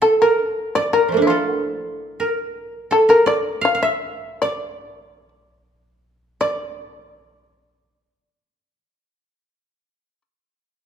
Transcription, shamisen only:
0.02 0.20 A4 medium
0.22 0.73 A#4 medium
0.75 0.93 D5 medium
0.93 1.27 A#4 medium
1.27 1.67 F4 soft
1.67 2.50 A4 soft
2.92 3.08 A4 medium
3.10 3.26 A#4 medium
3.27 3.61 D5 medium
3.65 3.82 F5 medium
3.83 4.38 E5 medium
4.42 5.28 D5 medium
6.41 10.22 D5 medium

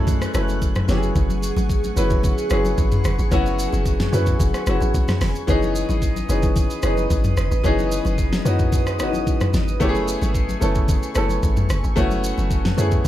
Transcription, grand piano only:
0.00 0.34 F#3 loud
0.00 0.90 G#3 medium
0.00 0.34 A3 loud
0.00 0.35 C#4 loud
0.00 0.36 E4 loud
0.00 0.91 G#4 loud
0.00 0.25 A4 loud
0.34 0.86 F#3 medium
0.34 0.88 A3 medium
0.34 0.88 C#4 medium
0.34 0.88 E4 medium
0.34 0.90 B4 loud
0.88 1.75 F#3 loud
0.88 1.75 B3 medium
0.88 1.76 C#4 medium
0.88 1.76 E4 medium
0.88 0.96 G4 medium
0.97 1.79 G#4 loud
1.96 2.40 F#3 loud
1.96 2.40 B3 medium
1.96 2.41 C#4 medium
1.96 2.41 E4 medium
1.96 2.41 B4 loud
2.50 3.16 F#3 medium
2.50 3.16 B3 medium
2.50 3.16 C#4 medium
2.50 3.17 E4 medium
2.50 3.17 G#4 loud
3.31 3.97 F#3 loud
3.31 3.97 B3 loud
3.31 3.97 C#4 loud
3.31 3.98 E4 loud
3.31 3.98 F#4 loud
4.12 4.56 F#3 medium
4.12 4.57 B3 medium
4.12 4.57 C#4 medium
4.12 4.57 E4 medium
4.12 4.58 B4 loud
4.66 5.32 F#3 medium
4.66 5.32 B3 medium
4.66 5.33 C#4 medium
4.66 5.33 E4 medium
4.66 5.34 F#4 loud
5.47 6.13 E3 loud
5.47 6.13 B3 loud
5.47 6.14 C#4 loud
5.47 6.14 D#4 loud
5.47 6.14 G#4 loud
6.28 6.73 E3 medium
6.28 6.73 B3 medium
6.28 6.73 C#4 medium
6.28 6.73 D#4 medium
6.28 6.74 G#4 loud
6.83 7.48 E3 medium
6.83 7.49 B3 medium
6.83 7.49 C#4 medium
6.83 7.49 D#4 medium
6.83 7.50 G#4 loud
7.63 8.29 E3 loud
7.63 8.30 B3 loud
7.63 8.30 C#4 loud
7.63 8.30 D#4 loud
7.63 8.31 G#4 loud
8.45 8.89 E3 loud
8.45 8.89 B3 medium
8.45 8.89 C#4 medium
8.45 8.90 D#4 medium
8.45 8.90 F#4 loud
8.99 9.06 D#3 medium
8.99 9.65 B3 medium
8.99 9.65 C#4 medium
8.99 9.65 D#4 medium
8.99 9.66 F#4 loud
9.05 9.67 E3 medium
9.80 10.46 A3 loud
9.80 10.46 B3 loud
9.80 10.46 C#4 loud
9.80 10.47 E4 loud
9.80 9.88 G4 loud
9.89 10.50 G#4 loud
10.61 11.05 A3 medium
10.61 11.05 B3 medium
10.61 11.05 C#4 medium
10.61 11.06 E4 medium
10.61 11.06 A4 loud
11.15 11.80 A3 medium
11.15 11.81 B3 medium
11.15 11.81 C#4 medium
11.15 11.82 E4 medium
11.15 11.82 A4 loud
11.96 12.62 A3 loud
11.96 12.62 B3 loud
11.96 12.62 C#4 loud
11.96 12.63 E4 loud
11.96 12.63 F#4 loud
12.77 13.08 A3 medium
12.77 13.08 B3 medium
12.77 13.08 C#4 medium
12.77 13.08 E4 medium
12.77 13.08 G#4 loud

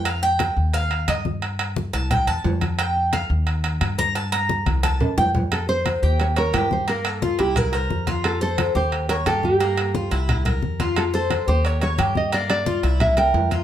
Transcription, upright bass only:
0.00 0.51 F2 medium
0.57 1.04 D#2 medium
1.08 1.88 G2 medium
1.93 2.25 C2 loud
2.27 2.43 E2 medium
2.45 3.24 F2 medium
3.30 3.77 D#2 loud
3.81 4.61 G2 medium
4.66 4.98 C2 medium
5.00 5.16 E2 medium
5.17 5.97 F2 medium
6.03 6.50 D#2 loud
6.54 7.33 G2 medium
7.39 7.87 C2 loud
7.90 8.69 F2 medium
8.75 9.23 D#2 loud
9.26 10.06 G2 medium
10.11 10.59 C2 loud
10.62 11.42 F2 medium
11.48 11.95 D#2 loud
11.99 12.78 G2 medium
12.83 13.31 C2 loud
13.34 13.64 F2 medium

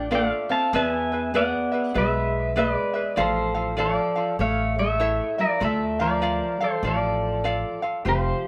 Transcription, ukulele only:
0.00 0.10 F4 medium
0.00 0.11 A4 medium
0.00 0.10 D5 medium
0.00 0.11 F5 medium
0.11 0.50 F4 medium
0.11 0.50 A4 medium
0.11 0.49 D5 medium
0.11 0.49 F5 medium
0.50 0.73 F4 soft
0.50 0.74 A4 soft
0.50 0.73 F5 soft
0.74 1.12 G#4 medium
0.74 1.12 B4 medium
0.74 1.11 D5 medium
0.74 1.11 E5 medium
1.12 1.34 G#4 soft
1.12 1.34 B4 soft
1.12 1.34 E5 medium
1.35 1.73 G#4 medium
1.35 1.72 B4 medium
1.35 1.72 D5 medium
1.35 1.71 E5 medium
1.72 1.93 G#4 soft
1.72 1.94 B4 soft
1.72 1.94 E5 soft
1.94 2.56 G#4 medium
1.94 2.56 B4 medium
1.94 2.55 D5 medium
1.94 2.56 E5 medium
2.56 2.95 G#4 medium
2.56 2.94 B4 medium
2.56 2.94 D5 medium
2.56 2.92 E5 medium
2.94 3.16 G#4 soft
2.94 3.17 B4 soft
2.94 3.17 E5 soft
3.16 3.55 F4 medium
3.16 3.54 A4 medium
3.16 3.55 D5 medium
3.16 3.53 F5 medium
3.55 3.76 F4 soft
3.55 3.76 A4 medium
3.55 3.77 F5 medium
3.77 4.16 F4 medium
3.77 4.15 A4 medium
3.77 4.16 D5 medium
3.77 4.14 F5 medium
4.16 4.40 F4 soft
4.16 4.39 A4 soft
4.16 4.39 F5 soft
4.39 5.00 A4 medium
4.39 4.98 C#5 medium
5.00 5.39 E4 medium
5.00 5.39 A4 medium
5.00 5.38 C#5 medium
5.00 5.37 E5 medium
5.38 5.61 E4 soft
5.38 5.60 E5 soft
5.60 5.99 F4 medium
5.60 5.99 A4 medium
5.60 5.99 D5 medium
5.99 6.21 F4 soft
5.99 6.22 F5 medium
6.22 6.61 F4 medium
6.22 6.60 D5 medium
6.22 6.59 F5 medium
6.61 6.83 A4 soft
6.61 6.83 F5 medium
6.83 7.44 F4 medium
6.83 7.43 A4 medium
6.83 7.43 D5 medium
6.83 7.45 F5 medium
7.44 7.83 F4 medium
7.44 7.82 A4 medium
7.44 7.83 D5 medium
7.44 7.81 F5 medium
7.82 8.05 F4 soft
7.82 8.05 A4 soft
7.82 8.05 F5 medium
8.05 8.48 C4 medium
8.05 8.48 F4 medium
8.05 8.48 G4 medium
8.05 8.48 C5 medium

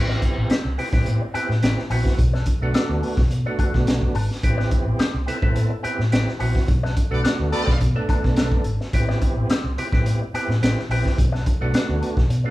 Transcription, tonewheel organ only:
0.00 0.53 B3 medium
0.00 0.53 C4 medium
0.00 0.54 E4 medium
0.00 0.57 G4 loud
0.78 0.89 B3 loud
0.78 0.89 C4 medium
0.78 0.89 E4 loud
0.78 0.89 G4 loud
0.93 1.23 B3 medium
0.93 1.23 C4 medium
0.93 1.23 E4 medium
0.93 1.23 G4 medium
1.34 1.54 B3 loud
1.34 1.55 C4 medium
1.34 1.55 E4 medium
1.34 1.55 G4 loud
1.63 1.83 B3 medium
1.63 1.83 C4 medium
1.63 1.83 E4 medium
1.63 1.83 G4 loud
1.91 2.19 B3 medium
1.91 2.19 C4 medium
1.91 2.19 E4 medium
1.91 2.19 F#4 loud
2.62 3.21 A3 medium
2.62 3.21 B3 medium
2.62 3.21 D4 medium
2.62 3.22 F#4 loud
3.46 4.14 A3 loud
3.46 4.15 B3 medium
3.46 4.15 D4 medium
3.46 4.15 F#4 loud
4.43 5.03 B3 loud
4.43 5.03 C4 medium
4.43 5.03 E4 loud
4.43 5.03 G4 loud
5.27 5.38 B3 loud
5.27 5.38 C4 medium
5.27 5.38 E4 loud
5.27 5.39 A4 loud
5.42 5.72 B3 medium
5.42 5.72 C4 medium
5.42 5.72 E4 medium
5.42 5.73 A4 loud
5.83 6.04 B3 medium
5.83 6.04 C4 medium
5.83 6.04 E4 medium
5.83 6.04 G4 loud
6.12 6.32 B3 medium
6.12 6.32 C4 loud
6.12 6.33 E4 loud
6.12 6.33 G4 loud
6.40 6.68 B3 loud
6.40 6.68 C4 medium
6.40 6.69 E4 medium
6.40 6.69 F#4 loud
7.11 7.70 A3 medium
7.11 7.70 B3 medium
7.11 7.71 D4 medium
7.11 7.71 F#4 loud
7.95 8.64 A3 loud
7.95 8.64 B3 medium
7.95 8.64 D4 medium
7.95 8.64 A4 loud
8.94 9.53 B3 medium
8.94 9.53 C4 medium
8.94 9.53 E4 medium
8.94 9.53 G4 loud
9.78 9.88 B3 loud
9.78 9.88 C4 medium
9.78 9.89 E4 medium
9.78 9.89 G4 loud
9.93 10.22 B3 medium
9.93 10.22 C4 medium
9.93 10.22 E4 medium
9.93 10.23 G4 medium
10.34 10.54 B3 loud
10.34 10.54 C4 medium
10.34 10.54 E4 medium
10.34 10.55 G4 loud
10.62 10.82 B3 loud
10.62 10.82 C4 medium
10.62 10.83 E4 medium
10.62 10.83 G4 loud
10.91 11.18 B3 loud
10.91 11.18 C4 medium
10.91 11.19 E4 medium
10.91 11.19 G4 loud
11.61 12.20 A3 medium
11.61 12.20 B3 medium
11.61 12.20 D4 medium
11.61 12.20 F#4 loud
12.45 12.50 A3 loud
12.45 12.50 B3 medium
12.45 12.50 D4 medium
12.45 12.50 F4 medium

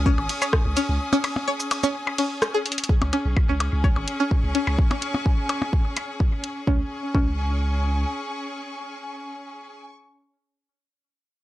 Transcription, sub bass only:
0.00 0.14 C#2 medium
0.18 0.28 G#1 medium
0.66 0.75 C#2 medium
0.89 0.99 C#2 medium
3.02 3.11 C#2 medium
3.25 3.35 B1 medium
3.49 3.69 C#2 medium
3.73 3.93 C#2 medium
3.96 4.06 G#1 medium
4.44 4.53 C#2 medium
4.67 4.77 C#2 medium
6.67 6.81 C#2 medium
7.15 8.05 C#2 medium

